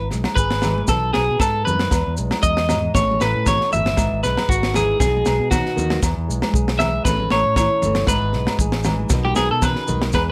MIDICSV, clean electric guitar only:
0, 0, Header, 1, 2, 480
1, 0, Start_track
1, 0, Key_signature, 4, "major"
1, 0, Tempo, 514139
1, 1799, Time_signature, 4, 2, 24, 8
1, 9633, End_track
2, 0, Start_track
2, 0, Title_t, "Clean electric guitar"
2, 0, Program_c, 0, 27
2, 332, Note_on_c, 0, 71, 81
2, 791, Note_off_c, 0, 71, 0
2, 830, Note_on_c, 0, 69, 78
2, 1055, Note_off_c, 0, 69, 0
2, 1059, Note_on_c, 0, 68, 86
2, 1301, Note_off_c, 0, 68, 0
2, 1311, Note_on_c, 0, 69, 82
2, 1537, Note_off_c, 0, 69, 0
2, 1541, Note_on_c, 0, 71, 92
2, 1996, Note_off_c, 0, 71, 0
2, 2266, Note_on_c, 0, 75, 96
2, 2719, Note_off_c, 0, 75, 0
2, 2753, Note_on_c, 0, 73, 73
2, 2989, Note_off_c, 0, 73, 0
2, 3001, Note_on_c, 0, 71, 92
2, 3233, Note_off_c, 0, 71, 0
2, 3245, Note_on_c, 0, 73, 83
2, 3475, Note_off_c, 0, 73, 0
2, 3480, Note_on_c, 0, 76, 91
2, 3926, Note_off_c, 0, 76, 0
2, 3953, Note_on_c, 0, 71, 83
2, 4189, Note_off_c, 0, 71, 0
2, 4196, Note_on_c, 0, 66, 73
2, 4430, Note_off_c, 0, 66, 0
2, 4442, Note_on_c, 0, 68, 83
2, 4656, Note_off_c, 0, 68, 0
2, 4667, Note_on_c, 0, 68, 77
2, 5119, Note_off_c, 0, 68, 0
2, 5143, Note_on_c, 0, 66, 75
2, 5596, Note_off_c, 0, 66, 0
2, 6338, Note_on_c, 0, 76, 105
2, 6576, Note_off_c, 0, 76, 0
2, 6580, Note_on_c, 0, 71, 88
2, 6821, Note_off_c, 0, 71, 0
2, 6829, Note_on_c, 0, 73, 89
2, 7053, Note_off_c, 0, 73, 0
2, 7064, Note_on_c, 0, 73, 84
2, 7517, Note_off_c, 0, 73, 0
2, 7547, Note_on_c, 0, 71, 78
2, 7998, Note_off_c, 0, 71, 0
2, 8633, Note_on_c, 0, 67, 81
2, 8736, Note_off_c, 0, 67, 0
2, 8739, Note_on_c, 0, 68, 92
2, 8872, Note_off_c, 0, 68, 0
2, 8879, Note_on_c, 0, 69, 80
2, 8992, Note_off_c, 0, 69, 0
2, 8992, Note_on_c, 0, 71, 86
2, 9363, Note_off_c, 0, 71, 0
2, 9473, Note_on_c, 0, 71, 80
2, 9547, Note_off_c, 0, 71, 0
2, 9633, End_track
0, 0, End_of_file